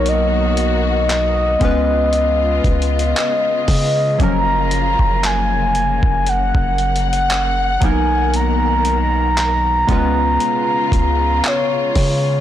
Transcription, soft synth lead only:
X:1
M:4/4
L:1/16
Q:"Swing 16ths" 1/4=58
K:F#
V:1 name="Soft synth lead"
d12 d4 | a4 g4 f3 f3 g2 | a12 c4 |]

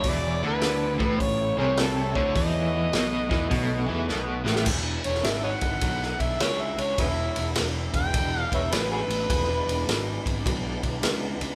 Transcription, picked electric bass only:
X:1
M:4/4
L:1/8
Q:"Swing" 1/4=104
K:Emix
V:1 name="Picked electric bass" clef=bass
E,,, D,,2 A,,, A,,, =C,,2 D,, | E,,2 B,,, E,, B,,, E,, B,,, A,,, | E,,, E,,, G,,, G,,, B,,, B,,, C,, C,, | E,,, E,,, E,,, E,,, E,,, E,,, A,,, A,,, |
E,,, E,,, G,,, G,,, B,,, B,,, C,, C,, |]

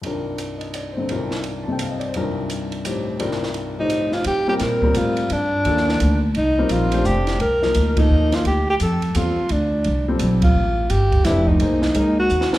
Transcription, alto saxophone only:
X:1
M:3/4
L:1/8
Q:"Swing" 1/4=171
K:Cdor
V:1 name="Alto saxophone"
z6 | z6 | z6 | z3 E2 F |
G G B2 F2 | D4- D z | E2 F2 G2 | B3 E2 F |
G G A2 F2 | D3 z2 F- | F2 G2 =E _E- | E3 _G2 z |]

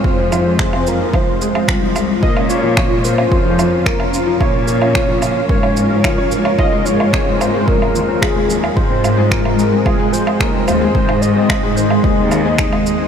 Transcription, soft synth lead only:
X:1
M:4/4
L:1/8
Q:1/4=110
K:Fm
V:1 name="Soft synth lead"
c3 B c2 z2 | e d2 c3 B2 | d4 d3 z | e d2 c B2 A2 |
c2 B2 A c B c | c e2 c e4 |]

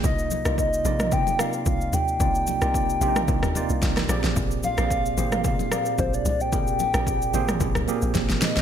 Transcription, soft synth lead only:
X:1
M:4/4
L:1/16
Q:"Swing 16ths" 1/4=111
K:Bbmix
V:1 name="Soft synth lead"
e4 e4 g2 f2 f2 g2- | g12- g2 z2 | z2 f6 f4 c d d g- | g8- g3 z3 e2 |]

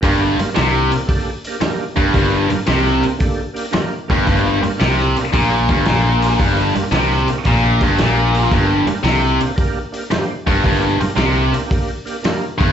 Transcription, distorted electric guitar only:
X:1
M:4/4
L:1/8
Q:"Swing" 1/4=113
K:Gm
V:1 name="Distorted electric guitar" clef=bass
G,, z C, z4 G,, | G,, z C, z4 G,, | G,, z C, z B,, G,, B,,2 | G,, z C, z B,, G,, B,,2 |
G,, z C, z4 G,, | G,, z C, z4 G,, |]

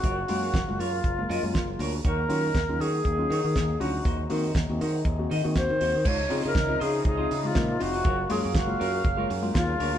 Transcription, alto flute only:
X:1
M:4/4
L:1/16
Q:"Swing 16ths" 1/4=120
K:Db
V:1 name="Alto flute"
G6 F8 z2 | B6 A8 G2- | G2 z8 z2 c4 | d3 B3 A2 A3 F3 G2- |
G2 A2 G4 z4 F4 |]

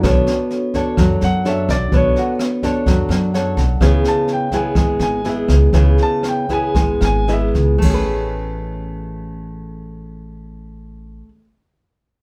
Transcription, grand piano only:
X:1
M:4/4
L:1/8
Q:1/4=121
K:A
V:1 name="Grand piano"
z4 z f e d | c F z6 | z a =g ^g2 g e z | z a =g ^g2 g [^de] z |
z8 | z8 |]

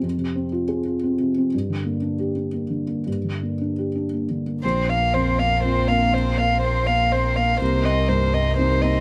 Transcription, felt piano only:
X:1
M:3/4
L:1/8
Q:1/4=121
K:Bbmix
V:1 name="Felt piano"
(3[F,,C] C, C (3F A F (3C C, C | (3G,, D, B, (3D G D (3B, D, B, | (3G,, D, B, (3D G D (3B, D, B, | B,,,2 F,,2 [B,CF]2- |
[B,CF]6 | C,,2 G,,2 [B,CE]2 |]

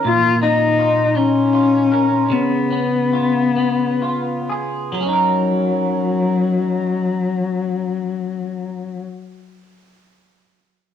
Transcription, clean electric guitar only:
X:1
M:6/8
L:1/8
Q:3/8=40
K:F#
V:1 name="Clean electric guitar"
A,, D E D E A | C, B, E B, E G | [F,CDA]6- | [F,CDA]6 |]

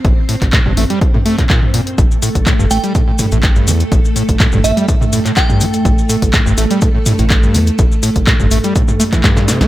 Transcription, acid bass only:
X:1
M:4/4
L:1/16
Q:"Swing 16ths" 1/4=124
K:Am
V:1 name="Acid bass" clef=bass
A,, z A,, z A,, G,, A, G, z A,, A, A,, _B,, z B,, z | A,, z A,, z A,, G,, A, G, A,, A,, A,, A,, z G,, G, z | A,, z A,, z A,, G,, A, G, A,, A,, A,, A,, z G,, G, z | A,, z A,, z A,, G,, A, G, A,, A,, A,, A,, z G,, G, z |
A,, z A,, z A,, G,, A, G, A,, A,, A, E, G,,2 C, C |]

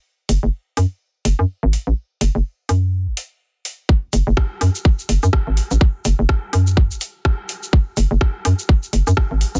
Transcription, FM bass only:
X:1
M:4/4
L:1/16
Q:"Swing 16ths" 1/4=125
K:F#m
V:1 name="FM bass" clef=bass
z2 F,,, F,,, z2 F,, z3 F,,, F,, z G,,, z A,,, | z2 F,,, F,,, z2 F,,3 F,,, z6 | z2 F,,, F,,, z2 F,, z3 F,,, F,, z G,,, z A,,, | z2 F,,, F,,, z2 F,,3 F,,, z6 |
z2 F,,, F,,, z2 F,, z3 F,,, F,, z G,,, z A,,, |]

